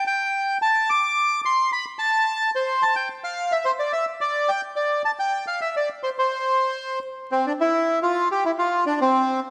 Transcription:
0.07 G5
0.62 A5
0.90 D6
1.45 C6
1.73 B5
1.99 A5
2.55 C5
2.83 A5
2.96 G5
3.24 F5
3.52 E5
3.65 C5
3.79 D5
3.93 E5
4.21 D5
4.49 G5
4.76 D5
5.05 A5
5.19 G5
5.47 F5
5.61 E5
5.77 D5
6.03 C5
6.18 C5
7.32 C4
7.46 D4
7.61 E4
8.03 F4
8.31 G4
8.45 E4
8.59 F4
8.87 D4
9.01 C4

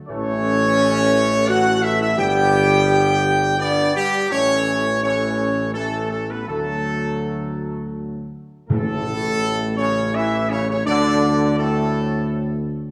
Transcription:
0.07 A1 E3 A3 C#4 C#5
1.47 F#4 F#5
1.83 E4 E5
2.01 E4 E5
2.16 G1 G3 B3 G4 G5
3.59 G3 B3 D4 D5
3.95 G3 G4
4.31 A1 E3 A3 C#4 C#5
5.02 E3 A3 C#4 C#5
5.74 E3 A3 A4
6.10 A3 A4
6.29 B3 B4
6.46 D2 F#3 A3 A4
8.68 A1 A2 A3 A4
9.77 C#3 C#4 C#5
10.13 E3 E4 E5
10.49 C#3 C#4 C#5
10.67 C#3 C#4 C#5
10.85 D2 D3 D4 D5
11.58 A2 A3 A4

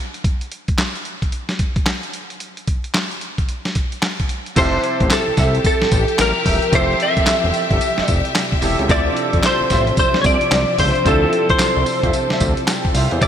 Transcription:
0.14 closed hi-hat
0.24 kick, closed hi-hat
0.41 closed hi-hat
0.52 closed hi-hat
0.68 kick, closed hi-hat
0.78 snare, clap, closed hi-hat
0.95 closed hi-hat
1.05 closed hi-hat
1.22 kick, closed hi-hat
1.32 closed hi-hat
1.49 snare, closed hi-hat
1.59 kick, closed hi-hat
1.76 kick, closed hi-hat
1.86 snare, clap, closed hi-hat
2.03 closed hi-hat
2.13 closed hi-hat
2.30 closed hi-hat
2.40 closed hi-hat
2.57 closed hi-hat
2.67 kick, closed hi-hat
2.84 closed hi-hat
2.94 snare, clap, closed hi-hat
3.11 closed hi-hat
3.21 closed hi-hat
3.38 kick, closed hi-hat
3.49 closed hi-hat
3.65 snare, closed hi-hat
3.75 kick, closed hi-hat
3.92 closed hi-hat
4.02 snare, clap, closed hi-hat
4.20 kick, closed hi-hat
4.29 closed hi-hat
4.46 closed hi-hat
4.56 F1 C3 F3 G3 C4 E4 G4 A4 C5 E5 A5, kick, closed hi-hat, crash, tambourine
4.84 closed hi-hat
5.00 A1, kick, closed hi-hat
5.10 A4, snare, clap, closed hi-hat, tambourine
5.28 C2
5.37 C2 G4 A4 E5, kick, snare, closed hi-hat, tambourine
5.55 closed hi-hat
5.64 A4, kick, closed hi-hat, tambourine
5.82 A1, snare
5.91 A1, kick, closed hi-hat, tambourine
6.08 closed hi-hat
6.18 A1 A#4, snare, clap, closed hi-hat, tambourine
6.45 E1 G4 A4 E5, kick, open hi-hat, tambourine
6.62 closed hi-hat
6.72 F1 C4 E4 G4 A4 C5 E5, kick, closed hi-hat, tambourine
7.00 E5, closed hi-hat
7.17 E1, kick, closed hi-hat
7.27 snare, clap, closed hi-hat, tambourine
7.44 E1
7.54 closed hi-hat, tambourine
7.70 G1 G4 A4 E5, kick, closed hi-hat
7.81 closed hi-hat, tambourine
7.98 F1 G4 A4 E5, snare
8.07 F1 D5, kick, closed hi-hat, tambourine
8.25 closed hi-hat
8.35 snare, clap, closed hi-hat, tambourine
8.52 kick
8.61 E1 C4 E4 G4 A4 E5, open hi-hat, tambourine
8.79 C#2, closed hi-hat
8.88 D2 F3 C4 D4 E4 F4 A4 C5 D5 E5, kick, closed hi-hat, tambourine
9.17 closed hi-hat
9.33 F2, kick, closed hi-hat
9.43 C5, snare, clap, closed hi-hat, tambourine
9.60 A1
9.70 A1 F4 C5 E5, kick, snare, closed hi-hat, tambourine
9.87 closed hi-hat
9.97 C5, kick, closed hi-hat, tambourine
10.14 C2, snare
10.21 C2 C#5, kick, closed hi-hat, tambourine
10.26 D5
10.41 closed hi-hat
10.51 C2, snare, clap, closed hi-hat, tambourine
10.78 C#2 F4 C5 E5, kick, open hi-hat, tambourine
10.95 closed hi-hat
11.04 D2 C4 E4 F4 A4 C5 E5, kick, closed hi-hat, tambourine
11.33 closed hi-hat
11.49 C2 C5, kick, closed hi-hat
11.59 snare, clap, closed hi-hat, tambourine
11.77 C2
11.86 open hi-hat, tambourine
12.03 F2 F4 C5 E5, kick, closed hi-hat
12.13 closed hi-hat, tambourine
12.30 D2 F4 C5 E5, snare
12.40 D2, kick, closed hi-hat, tambourine
12.57 closed hi-hat
12.67 G5, snare, clap, closed hi-hat, tambourine
12.85 kick
12.94 C2 F4 C5 E5 F5, open hi-hat, tambourine
13.11 E2 C5, closed hi-hat
13.21 F1 F3 C4 E4 G4 A4 D5 E5, kick, closed hi-hat, tambourine

